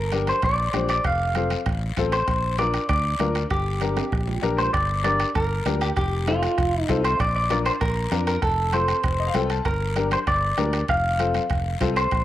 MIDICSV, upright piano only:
0, 0, Header, 1, 2, 480
1, 0, Start_track
1, 0, Key_signature, -2, "minor"
1, 0, Tempo, 307535
1, 1631, Time_signature, 4, 2, 24, 8
1, 19112, End_track
2, 0, Start_track
2, 0, Title_t, "Upright piano"
2, 0, Program_c, 0, 0
2, 191, Note_on_c, 0, 62, 65
2, 198, Note_on_c, 0, 67, 60
2, 205, Note_on_c, 0, 70, 66
2, 526, Note_off_c, 0, 62, 0
2, 530, Note_off_c, 0, 67, 0
2, 533, Note_off_c, 0, 70, 0
2, 1143, Note_on_c, 0, 62, 67
2, 1150, Note_on_c, 0, 67, 60
2, 1159, Note_on_c, 0, 72, 72
2, 1483, Note_off_c, 0, 62, 0
2, 1487, Note_off_c, 0, 67, 0
2, 1491, Note_off_c, 0, 72, 0
2, 2113, Note_on_c, 0, 60, 66
2, 2122, Note_on_c, 0, 69, 67
2, 2123, Note_on_c, 0, 65, 56
2, 2448, Note_off_c, 0, 60, 0
2, 2453, Note_off_c, 0, 65, 0
2, 2453, Note_off_c, 0, 69, 0
2, 3078, Note_on_c, 0, 60, 81
2, 3085, Note_on_c, 0, 65, 73
2, 3092, Note_on_c, 0, 69, 87
2, 3411, Note_off_c, 0, 60, 0
2, 3415, Note_off_c, 0, 65, 0
2, 3418, Note_off_c, 0, 69, 0
2, 4035, Note_on_c, 0, 62, 65
2, 4039, Note_on_c, 0, 65, 58
2, 4045, Note_on_c, 0, 70, 72
2, 4370, Note_off_c, 0, 62, 0
2, 4372, Note_off_c, 0, 65, 0
2, 4375, Note_off_c, 0, 70, 0
2, 4994, Note_on_c, 0, 62, 67
2, 5002, Note_on_c, 0, 65, 60
2, 5005, Note_on_c, 0, 70, 79
2, 5330, Note_off_c, 0, 62, 0
2, 5334, Note_off_c, 0, 65, 0
2, 5336, Note_off_c, 0, 70, 0
2, 5951, Note_on_c, 0, 62, 61
2, 5958, Note_on_c, 0, 67, 56
2, 5963, Note_on_c, 0, 70, 70
2, 6288, Note_off_c, 0, 62, 0
2, 6292, Note_off_c, 0, 67, 0
2, 6295, Note_off_c, 0, 70, 0
2, 6904, Note_on_c, 0, 62, 74
2, 6914, Note_on_c, 0, 67, 69
2, 6918, Note_on_c, 0, 70, 88
2, 7245, Note_off_c, 0, 62, 0
2, 7250, Note_off_c, 0, 67, 0
2, 7252, Note_off_c, 0, 70, 0
2, 7868, Note_on_c, 0, 62, 68
2, 7878, Note_on_c, 0, 67, 59
2, 7881, Note_on_c, 0, 70, 68
2, 8207, Note_off_c, 0, 62, 0
2, 8212, Note_off_c, 0, 67, 0
2, 8214, Note_off_c, 0, 70, 0
2, 8828, Note_on_c, 0, 62, 69
2, 8836, Note_on_c, 0, 67, 62
2, 8843, Note_on_c, 0, 70, 74
2, 9167, Note_off_c, 0, 62, 0
2, 9171, Note_off_c, 0, 67, 0
2, 9174, Note_off_c, 0, 70, 0
2, 9785, Note_on_c, 0, 60, 66
2, 9790, Note_on_c, 0, 65, 61
2, 9795, Note_on_c, 0, 69, 74
2, 10125, Note_off_c, 0, 60, 0
2, 10128, Note_off_c, 0, 65, 0
2, 10130, Note_off_c, 0, 69, 0
2, 10750, Note_on_c, 0, 60, 80
2, 10759, Note_on_c, 0, 65, 81
2, 10764, Note_on_c, 0, 69, 95
2, 11087, Note_off_c, 0, 60, 0
2, 11092, Note_off_c, 0, 65, 0
2, 11094, Note_off_c, 0, 69, 0
2, 11705, Note_on_c, 0, 62, 69
2, 11710, Note_on_c, 0, 65, 64
2, 11713, Note_on_c, 0, 70, 73
2, 12045, Note_off_c, 0, 62, 0
2, 12047, Note_off_c, 0, 65, 0
2, 12048, Note_off_c, 0, 70, 0
2, 12667, Note_on_c, 0, 62, 66
2, 12675, Note_on_c, 0, 65, 60
2, 12678, Note_on_c, 0, 70, 79
2, 13006, Note_off_c, 0, 62, 0
2, 13009, Note_off_c, 0, 65, 0
2, 13011, Note_off_c, 0, 70, 0
2, 13631, Note_on_c, 0, 60, 66
2, 13641, Note_on_c, 0, 65, 59
2, 13645, Note_on_c, 0, 69, 76
2, 13967, Note_off_c, 0, 60, 0
2, 13972, Note_off_c, 0, 65, 0
2, 13974, Note_off_c, 0, 69, 0
2, 14355, Note_on_c, 0, 75, 62
2, 14465, Note_off_c, 0, 75, 0
2, 14475, Note_on_c, 0, 77, 66
2, 14584, Note_off_c, 0, 77, 0
2, 14587, Note_on_c, 0, 60, 82
2, 14587, Note_on_c, 0, 79, 68
2, 14590, Note_on_c, 0, 65, 78
2, 14593, Note_on_c, 0, 69, 92
2, 14812, Note_off_c, 0, 79, 0
2, 14837, Note_on_c, 0, 81, 66
2, 14925, Note_off_c, 0, 60, 0
2, 14926, Note_off_c, 0, 65, 0
2, 14928, Note_off_c, 0, 69, 0
2, 15057, Note_off_c, 0, 81, 0
2, 15544, Note_on_c, 0, 62, 66
2, 15548, Note_on_c, 0, 67, 60
2, 15559, Note_on_c, 0, 70, 70
2, 15883, Note_off_c, 0, 62, 0
2, 15885, Note_off_c, 0, 67, 0
2, 15891, Note_off_c, 0, 70, 0
2, 16503, Note_on_c, 0, 62, 72
2, 16505, Note_on_c, 0, 67, 63
2, 16514, Note_on_c, 0, 70, 78
2, 16842, Note_off_c, 0, 62, 0
2, 16844, Note_off_c, 0, 67, 0
2, 16848, Note_off_c, 0, 70, 0
2, 17465, Note_on_c, 0, 60, 66
2, 17473, Note_on_c, 0, 65, 59
2, 17477, Note_on_c, 0, 69, 75
2, 17803, Note_off_c, 0, 60, 0
2, 17807, Note_off_c, 0, 65, 0
2, 17809, Note_off_c, 0, 69, 0
2, 18425, Note_on_c, 0, 60, 84
2, 18435, Note_on_c, 0, 65, 78
2, 18443, Note_on_c, 0, 69, 86
2, 18763, Note_off_c, 0, 60, 0
2, 18768, Note_off_c, 0, 65, 0
2, 18772, Note_off_c, 0, 69, 0
2, 19112, End_track
0, 0, End_of_file